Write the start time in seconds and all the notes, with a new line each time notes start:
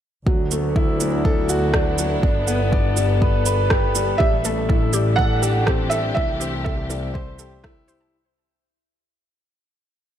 0.26 D2 F#3, kick
0.51 A3 B3, shaker
0.71 E4
0.76 E4, kick
1.00 F#3, shaker
1.16 A4
1.25 A4, kick
1.49 F#4, shaker
1.74 D4, kick, cross-stick
1.98 F#3, shaker
2.22 G1 D4, kick
2.47 B3, shaker
2.72 D5, kick
2.96 G3, shaker
3.22 B4, kick
3.46 B4, shaker
3.70 G4, kick, cross-stick
3.95 G3, shaker
4.18 A1 E3 G3 G4 E5, kick
4.44 A3 A4, shaker
4.57 D4
4.69 E4 A4, kick
4.93 G3 G4, shaker
5.09 G4
5.16 A4 F#5, kick
5.42 G4 A4, shaker
5.66 C4 G4, kick, cross-stick
5.90 G3 A4 E5, shaker
6.15 C2 E4 A4 E5, kick
6.40 C4 G4, shaker
6.64 A4 E5, kick
6.90 G3 A4, shaker
7.14 G4 C5, kick
7.38 G4 A4, shaker
7.64 E4 A4, kick, cross-stick
7.88 G4 C5, shaker
8.01 A5